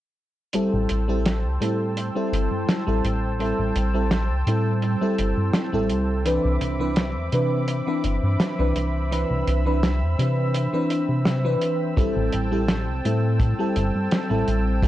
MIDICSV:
0, 0, Header, 1, 5, 480
1, 0, Start_track
1, 0, Tempo, 714286
1, 366, Time_signature, 4, 2, 24, 8
1, 9997, End_track
2, 0, Start_track
2, 0, Title_t, "Analog synth pad"
2, 0, Program_c, 0, 89
2, 362, Note_on_c, 0, 79, 71
2, 362, Note_on_c, 0, 81, 73
2, 363, Note_on_c, 0, 72, 82
2, 363, Note_on_c, 0, 88, 86
2, 4177, Note_off_c, 0, 79, 0
2, 4177, Note_off_c, 0, 81, 0
2, 4177, Note_off_c, 0, 88, 0
2, 4178, Note_off_c, 0, 72, 0
2, 4204, Note_on_c, 0, 60, 79
2, 4204, Note_on_c, 0, 83, 73
2, 4205, Note_on_c, 0, 86, 89
2, 4207, Note_on_c, 0, 76, 76
2, 6106, Note_off_c, 0, 86, 0
2, 6125, Note_on_c, 0, 88, 87
2, 8018, Note_off_c, 0, 83, 0
2, 8020, Note_off_c, 0, 76, 0
2, 8051, Note_on_c, 0, 79, 74
2, 8052, Note_on_c, 0, 81, 74
2, 9997, Note_off_c, 0, 60, 0
2, 9997, Note_off_c, 0, 79, 0
2, 9997, Note_off_c, 0, 81, 0
2, 9997, Note_off_c, 0, 88, 0
2, 9997, End_track
3, 0, Start_track
3, 0, Title_t, "FM electric piano"
3, 0, Program_c, 1, 5
3, 361, Note_on_c, 1, 55, 85
3, 363, Note_on_c, 1, 60, 78
3, 368, Note_on_c, 1, 64, 78
3, 371, Note_on_c, 1, 69, 91
3, 699, Note_off_c, 1, 55, 0
3, 700, Note_off_c, 1, 60, 0
3, 703, Note_off_c, 1, 64, 0
3, 704, Note_off_c, 1, 69, 0
3, 726, Note_on_c, 1, 55, 85
3, 731, Note_on_c, 1, 60, 77
3, 734, Note_on_c, 1, 64, 79
3, 737, Note_on_c, 1, 69, 95
3, 792, Note_off_c, 1, 55, 0
3, 794, Note_off_c, 1, 60, 0
3, 796, Note_off_c, 1, 64, 0
3, 797, Note_off_c, 1, 69, 0
3, 1078, Note_on_c, 1, 55, 71
3, 1082, Note_on_c, 1, 60, 64
3, 1084, Note_on_c, 1, 64, 64
3, 1087, Note_on_c, 1, 69, 79
3, 1417, Note_off_c, 1, 55, 0
3, 1419, Note_off_c, 1, 60, 0
3, 1421, Note_off_c, 1, 64, 0
3, 1422, Note_off_c, 1, 69, 0
3, 1446, Note_on_c, 1, 55, 87
3, 1450, Note_on_c, 1, 60, 80
3, 1453, Note_on_c, 1, 64, 79
3, 1455, Note_on_c, 1, 69, 93
3, 1899, Note_off_c, 1, 55, 0
3, 1900, Note_off_c, 1, 60, 0
3, 1902, Note_off_c, 1, 64, 0
3, 1903, Note_off_c, 1, 69, 0
3, 1925, Note_on_c, 1, 55, 82
3, 1929, Note_on_c, 1, 60, 77
3, 1933, Note_on_c, 1, 64, 76
3, 1936, Note_on_c, 1, 69, 92
3, 2255, Note_off_c, 1, 55, 0
3, 2257, Note_off_c, 1, 60, 0
3, 2259, Note_off_c, 1, 64, 0
3, 2261, Note_off_c, 1, 69, 0
3, 2280, Note_on_c, 1, 55, 85
3, 2284, Note_on_c, 1, 60, 80
3, 2288, Note_on_c, 1, 64, 81
3, 2291, Note_on_c, 1, 69, 95
3, 2619, Note_off_c, 1, 55, 0
3, 2621, Note_off_c, 1, 60, 0
3, 2623, Note_off_c, 1, 64, 0
3, 2624, Note_off_c, 1, 69, 0
3, 2645, Note_on_c, 1, 55, 84
3, 2649, Note_on_c, 1, 60, 78
3, 2651, Note_on_c, 1, 64, 78
3, 2656, Note_on_c, 1, 69, 91
3, 2711, Note_off_c, 1, 55, 0
3, 2713, Note_off_c, 1, 60, 0
3, 2714, Note_off_c, 1, 64, 0
3, 2717, Note_off_c, 1, 69, 0
3, 3004, Note_on_c, 1, 55, 73
3, 3007, Note_on_c, 1, 60, 65
3, 3010, Note_on_c, 1, 64, 64
3, 3013, Note_on_c, 1, 69, 80
3, 3341, Note_off_c, 1, 55, 0
3, 3342, Note_off_c, 1, 60, 0
3, 3344, Note_off_c, 1, 64, 0
3, 3345, Note_off_c, 1, 69, 0
3, 3367, Note_on_c, 1, 55, 86
3, 3370, Note_on_c, 1, 60, 78
3, 3374, Note_on_c, 1, 64, 80
3, 3377, Note_on_c, 1, 69, 99
3, 3819, Note_off_c, 1, 55, 0
3, 3821, Note_off_c, 1, 60, 0
3, 3823, Note_off_c, 1, 64, 0
3, 3824, Note_off_c, 1, 69, 0
3, 3847, Note_on_c, 1, 55, 84
3, 3851, Note_on_c, 1, 60, 78
3, 3856, Note_on_c, 1, 64, 79
3, 3859, Note_on_c, 1, 69, 93
3, 4176, Note_off_c, 1, 55, 0
3, 4178, Note_off_c, 1, 60, 0
3, 4180, Note_off_c, 1, 64, 0
3, 4182, Note_off_c, 1, 69, 0
3, 4201, Note_on_c, 1, 52, 87
3, 4205, Note_on_c, 1, 60, 80
3, 4209, Note_on_c, 1, 62, 79
3, 4210, Note_on_c, 1, 71, 97
3, 4539, Note_off_c, 1, 52, 0
3, 4541, Note_off_c, 1, 60, 0
3, 4543, Note_off_c, 1, 62, 0
3, 4544, Note_off_c, 1, 71, 0
3, 4565, Note_on_c, 1, 52, 86
3, 4569, Note_on_c, 1, 60, 78
3, 4573, Note_on_c, 1, 62, 78
3, 4576, Note_on_c, 1, 71, 98
3, 4631, Note_off_c, 1, 52, 0
3, 4633, Note_off_c, 1, 60, 0
3, 4635, Note_off_c, 1, 62, 0
3, 4637, Note_off_c, 1, 71, 0
3, 4921, Note_on_c, 1, 52, 73
3, 4925, Note_on_c, 1, 60, 64
3, 4929, Note_on_c, 1, 62, 64
3, 4932, Note_on_c, 1, 71, 78
3, 5259, Note_off_c, 1, 52, 0
3, 5261, Note_off_c, 1, 60, 0
3, 5263, Note_off_c, 1, 62, 0
3, 5265, Note_off_c, 1, 71, 0
3, 5286, Note_on_c, 1, 52, 85
3, 5291, Note_on_c, 1, 60, 81
3, 5293, Note_on_c, 1, 62, 81
3, 5296, Note_on_c, 1, 71, 94
3, 5739, Note_off_c, 1, 52, 0
3, 5741, Note_off_c, 1, 60, 0
3, 5742, Note_off_c, 1, 62, 0
3, 5743, Note_off_c, 1, 71, 0
3, 5768, Note_on_c, 1, 52, 86
3, 5770, Note_on_c, 1, 60, 77
3, 5775, Note_on_c, 1, 62, 78
3, 5777, Note_on_c, 1, 71, 92
3, 6097, Note_off_c, 1, 52, 0
3, 6098, Note_off_c, 1, 60, 0
3, 6100, Note_off_c, 1, 62, 0
3, 6101, Note_off_c, 1, 71, 0
3, 6122, Note_on_c, 1, 52, 87
3, 6126, Note_on_c, 1, 60, 79
3, 6129, Note_on_c, 1, 62, 79
3, 6132, Note_on_c, 1, 71, 96
3, 6460, Note_off_c, 1, 52, 0
3, 6461, Note_off_c, 1, 60, 0
3, 6463, Note_off_c, 1, 62, 0
3, 6465, Note_off_c, 1, 71, 0
3, 6487, Note_on_c, 1, 52, 85
3, 6489, Note_on_c, 1, 60, 79
3, 6491, Note_on_c, 1, 62, 79
3, 6496, Note_on_c, 1, 71, 94
3, 6552, Note_off_c, 1, 52, 0
3, 6553, Note_off_c, 1, 60, 0
3, 6554, Note_off_c, 1, 62, 0
3, 6557, Note_off_c, 1, 71, 0
3, 6842, Note_on_c, 1, 52, 72
3, 6845, Note_on_c, 1, 60, 64
3, 6849, Note_on_c, 1, 62, 65
3, 6852, Note_on_c, 1, 71, 79
3, 7180, Note_off_c, 1, 52, 0
3, 7181, Note_off_c, 1, 60, 0
3, 7183, Note_off_c, 1, 62, 0
3, 7185, Note_off_c, 1, 71, 0
3, 7210, Note_on_c, 1, 52, 86
3, 7215, Note_on_c, 1, 60, 81
3, 7218, Note_on_c, 1, 62, 78
3, 7220, Note_on_c, 1, 71, 94
3, 7661, Note_off_c, 1, 52, 0
3, 7663, Note_off_c, 1, 60, 0
3, 7664, Note_off_c, 1, 62, 0
3, 7666, Note_off_c, 1, 71, 0
3, 7689, Note_on_c, 1, 52, 82
3, 7693, Note_on_c, 1, 60, 78
3, 7696, Note_on_c, 1, 62, 77
3, 7700, Note_on_c, 1, 71, 92
3, 8017, Note_off_c, 1, 52, 0
3, 8019, Note_off_c, 1, 60, 0
3, 8021, Note_off_c, 1, 62, 0
3, 8023, Note_off_c, 1, 71, 0
3, 8040, Note_on_c, 1, 55, 90
3, 8044, Note_on_c, 1, 60, 80
3, 8047, Note_on_c, 1, 64, 80
3, 8050, Note_on_c, 1, 69, 94
3, 8379, Note_off_c, 1, 55, 0
3, 8381, Note_off_c, 1, 60, 0
3, 8382, Note_off_c, 1, 64, 0
3, 8384, Note_off_c, 1, 69, 0
3, 8409, Note_on_c, 1, 55, 88
3, 8411, Note_on_c, 1, 60, 78
3, 8414, Note_on_c, 1, 64, 77
3, 8418, Note_on_c, 1, 69, 94
3, 8473, Note_off_c, 1, 55, 0
3, 8474, Note_off_c, 1, 60, 0
3, 8476, Note_off_c, 1, 64, 0
3, 8478, Note_off_c, 1, 69, 0
3, 8767, Note_on_c, 1, 55, 73
3, 8770, Note_on_c, 1, 60, 65
3, 8774, Note_on_c, 1, 64, 66
3, 8777, Note_on_c, 1, 69, 80
3, 9102, Note_off_c, 1, 55, 0
3, 9104, Note_off_c, 1, 60, 0
3, 9106, Note_off_c, 1, 64, 0
3, 9107, Note_off_c, 1, 69, 0
3, 9130, Note_on_c, 1, 55, 89
3, 9133, Note_on_c, 1, 60, 78
3, 9136, Note_on_c, 1, 64, 81
3, 9140, Note_on_c, 1, 69, 98
3, 9581, Note_off_c, 1, 55, 0
3, 9582, Note_off_c, 1, 60, 0
3, 9584, Note_off_c, 1, 64, 0
3, 9586, Note_off_c, 1, 69, 0
3, 9606, Note_on_c, 1, 55, 85
3, 9610, Note_on_c, 1, 60, 79
3, 9612, Note_on_c, 1, 64, 78
3, 9615, Note_on_c, 1, 69, 95
3, 9936, Note_off_c, 1, 55, 0
3, 9937, Note_off_c, 1, 60, 0
3, 9939, Note_off_c, 1, 64, 0
3, 9940, Note_off_c, 1, 69, 0
3, 9964, Note_on_c, 1, 55, 86
3, 9966, Note_on_c, 1, 60, 81
3, 9968, Note_on_c, 1, 64, 82
3, 9974, Note_on_c, 1, 69, 98
3, 9997, Note_off_c, 1, 55, 0
3, 9997, Note_off_c, 1, 60, 0
3, 9997, Note_off_c, 1, 64, 0
3, 9997, Note_off_c, 1, 69, 0
3, 9997, End_track
4, 0, Start_track
4, 0, Title_t, "Analog synth bass"
4, 0, Program_c, 2, 38
4, 368, Note_on_c, 2, 33, 43
4, 468, Note_off_c, 2, 33, 0
4, 494, Note_on_c, 2, 33, 94
4, 586, Note_off_c, 2, 33, 0
4, 609, Note_on_c, 2, 33, 82
4, 970, Note_on_c, 2, 36, 80
4, 980, Note_off_c, 2, 33, 0
4, 1064, Note_off_c, 2, 36, 0
4, 1083, Note_on_c, 2, 45, 95
4, 1413, Note_off_c, 2, 45, 0
4, 1563, Note_on_c, 2, 31, 101
4, 1667, Note_off_c, 2, 31, 0
4, 1688, Note_on_c, 2, 43, 86
4, 1783, Note_off_c, 2, 43, 0
4, 1930, Note_on_c, 2, 33, 81
4, 2024, Note_off_c, 2, 33, 0
4, 2043, Note_on_c, 2, 33, 96
4, 2373, Note_off_c, 2, 33, 0
4, 2408, Note_on_c, 2, 33, 99
4, 2503, Note_off_c, 2, 33, 0
4, 2523, Note_on_c, 2, 33, 83
4, 2887, Note_on_c, 2, 36, 78
4, 2898, Note_off_c, 2, 33, 0
4, 2982, Note_off_c, 2, 36, 0
4, 3002, Note_on_c, 2, 45, 98
4, 3333, Note_off_c, 2, 45, 0
4, 3485, Note_on_c, 2, 31, 101
4, 3588, Note_off_c, 2, 31, 0
4, 3610, Note_on_c, 2, 43, 87
4, 3704, Note_off_c, 2, 43, 0
4, 3851, Note_on_c, 2, 33, 85
4, 3966, Note_on_c, 2, 36, 93
4, 3976, Note_off_c, 2, 33, 0
4, 4294, Note_off_c, 2, 36, 0
4, 4330, Note_on_c, 2, 36, 94
4, 4424, Note_off_c, 2, 36, 0
4, 4443, Note_on_c, 2, 36, 82
4, 4810, Note_on_c, 2, 40, 80
4, 4820, Note_off_c, 2, 36, 0
4, 4904, Note_off_c, 2, 40, 0
4, 4923, Note_on_c, 2, 48, 96
4, 5253, Note_off_c, 2, 48, 0
4, 5404, Note_on_c, 2, 31, 99
4, 5507, Note_off_c, 2, 31, 0
4, 5531, Note_on_c, 2, 43, 83
4, 5624, Note_off_c, 2, 43, 0
4, 5773, Note_on_c, 2, 36, 84
4, 5865, Note_off_c, 2, 36, 0
4, 5886, Note_on_c, 2, 36, 93
4, 6214, Note_off_c, 2, 36, 0
4, 6251, Note_on_c, 2, 36, 97
4, 6344, Note_off_c, 2, 36, 0
4, 6366, Note_on_c, 2, 36, 83
4, 6733, Note_on_c, 2, 40, 80
4, 6743, Note_off_c, 2, 36, 0
4, 6825, Note_off_c, 2, 40, 0
4, 6846, Note_on_c, 2, 48, 97
4, 7174, Note_off_c, 2, 48, 0
4, 7452, Note_on_c, 2, 48, 83
4, 7772, Note_off_c, 2, 48, 0
4, 8045, Note_on_c, 2, 33, 42
4, 8146, Note_off_c, 2, 33, 0
4, 8174, Note_on_c, 2, 33, 97
4, 8266, Note_off_c, 2, 33, 0
4, 8290, Note_on_c, 2, 33, 81
4, 8654, Note_on_c, 2, 36, 80
4, 8664, Note_off_c, 2, 33, 0
4, 8746, Note_off_c, 2, 36, 0
4, 8770, Note_on_c, 2, 45, 97
4, 9097, Note_off_c, 2, 45, 0
4, 9249, Note_on_c, 2, 31, 101
4, 9350, Note_off_c, 2, 31, 0
4, 9375, Note_on_c, 2, 43, 86
4, 9466, Note_off_c, 2, 43, 0
4, 9614, Note_on_c, 2, 33, 83
4, 9706, Note_off_c, 2, 33, 0
4, 9729, Note_on_c, 2, 33, 93
4, 9997, Note_off_c, 2, 33, 0
4, 9997, End_track
5, 0, Start_track
5, 0, Title_t, "Drums"
5, 357, Note_on_c, 9, 42, 90
5, 424, Note_off_c, 9, 42, 0
5, 599, Note_on_c, 9, 42, 78
5, 666, Note_off_c, 9, 42, 0
5, 844, Note_on_c, 9, 42, 86
5, 847, Note_on_c, 9, 38, 104
5, 911, Note_off_c, 9, 42, 0
5, 914, Note_off_c, 9, 38, 0
5, 1087, Note_on_c, 9, 42, 78
5, 1154, Note_off_c, 9, 42, 0
5, 1324, Note_on_c, 9, 42, 78
5, 1391, Note_off_c, 9, 42, 0
5, 1569, Note_on_c, 9, 42, 79
5, 1636, Note_off_c, 9, 42, 0
5, 1805, Note_on_c, 9, 38, 119
5, 1806, Note_on_c, 9, 42, 78
5, 1872, Note_off_c, 9, 38, 0
5, 1873, Note_off_c, 9, 42, 0
5, 2046, Note_on_c, 9, 42, 71
5, 2114, Note_off_c, 9, 42, 0
5, 2286, Note_on_c, 9, 42, 75
5, 2353, Note_off_c, 9, 42, 0
5, 2524, Note_on_c, 9, 42, 77
5, 2591, Note_off_c, 9, 42, 0
5, 2762, Note_on_c, 9, 38, 117
5, 2763, Note_on_c, 9, 42, 78
5, 2829, Note_off_c, 9, 38, 0
5, 2830, Note_off_c, 9, 42, 0
5, 3005, Note_on_c, 9, 42, 76
5, 3072, Note_off_c, 9, 42, 0
5, 3242, Note_on_c, 9, 42, 77
5, 3309, Note_off_c, 9, 42, 0
5, 3484, Note_on_c, 9, 42, 75
5, 3551, Note_off_c, 9, 42, 0
5, 3719, Note_on_c, 9, 38, 127
5, 3724, Note_on_c, 9, 42, 85
5, 3787, Note_off_c, 9, 38, 0
5, 3791, Note_off_c, 9, 42, 0
5, 3962, Note_on_c, 9, 42, 67
5, 4029, Note_off_c, 9, 42, 0
5, 4205, Note_on_c, 9, 42, 84
5, 4272, Note_off_c, 9, 42, 0
5, 4444, Note_on_c, 9, 42, 77
5, 4511, Note_off_c, 9, 42, 0
5, 4678, Note_on_c, 9, 42, 79
5, 4684, Note_on_c, 9, 38, 116
5, 4745, Note_off_c, 9, 42, 0
5, 4751, Note_off_c, 9, 38, 0
5, 4922, Note_on_c, 9, 42, 73
5, 4989, Note_off_c, 9, 42, 0
5, 5160, Note_on_c, 9, 42, 89
5, 5227, Note_off_c, 9, 42, 0
5, 5402, Note_on_c, 9, 42, 71
5, 5469, Note_off_c, 9, 42, 0
5, 5643, Note_on_c, 9, 38, 123
5, 5645, Note_on_c, 9, 42, 83
5, 5710, Note_off_c, 9, 38, 0
5, 5712, Note_off_c, 9, 42, 0
5, 5885, Note_on_c, 9, 42, 75
5, 5952, Note_off_c, 9, 42, 0
5, 6131, Note_on_c, 9, 42, 73
5, 6198, Note_off_c, 9, 42, 0
5, 6366, Note_on_c, 9, 42, 78
5, 6433, Note_off_c, 9, 42, 0
5, 6606, Note_on_c, 9, 38, 120
5, 6607, Note_on_c, 9, 42, 79
5, 6673, Note_off_c, 9, 38, 0
5, 6674, Note_off_c, 9, 42, 0
5, 6850, Note_on_c, 9, 42, 77
5, 6917, Note_off_c, 9, 42, 0
5, 7086, Note_on_c, 9, 42, 85
5, 7153, Note_off_c, 9, 42, 0
5, 7327, Note_on_c, 9, 42, 74
5, 7394, Note_off_c, 9, 42, 0
5, 7563, Note_on_c, 9, 38, 122
5, 7571, Note_on_c, 9, 42, 81
5, 7631, Note_off_c, 9, 38, 0
5, 7638, Note_off_c, 9, 42, 0
5, 7805, Note_on_c, 9, 42, 72
5, 7872, Note_off_c, 9, 42, 0
5, 8046, Note_on_c, 9, 36, 108
5, 8051, Note_on_c, 9, 42, 83
5, 8113, Note_off_c, 9, 36, 0
5, 8118, Note_off_c, 9, 42, 0
5, 8283, Note_on_c, 9, 42, 71
5, 8350, Note_off_c, 9, 42, 0
5, 8524, Note_on_c, 9, 38, 117
5, 8525, Note_on_c, 9, 42, 88
5, 8591, Note_off_c, 9, 38, 0
5, 8592, Note_off_c, 9, 42, 0
5, 8772, Note_on_c, 9, 42, 69
5, 8839, Note_off_c, 9, 42, 0
5, 9002, Note_on_c, 9, 36, 112
5, 9003, Note_on_c, 9, 42, 81
5, 9070, Note_off_c, 9, 36, 0
5, 9070, Note_off_c, 9, 42, 0
5, 9246, Note_on_c, 9, 42, 76
5, 9313, Note_off_c, 9, 42, 0
5, 9484, Note_on_c, 9, 42, 80
5, 9490, Note_on_c, 9, 38, 116
5, 9551, Note_off_c, 9, 42, 0
5, 9557, Note_off_c, 9, 38, 0
5, 9728, Note_on_c, 9, 42, 66
5, 9796, Note_off_c, 9, 42, 0
5, 9963, Note_on_c, 9, 36, 102
5, 9967, Note_on_c, 9, 42, 87
5, 9997, Note_off_c, 9, 36, 0
5, 9997, Note_off_c, 9, 42, 0
5, 9997, End_track
0, 0, End_of_file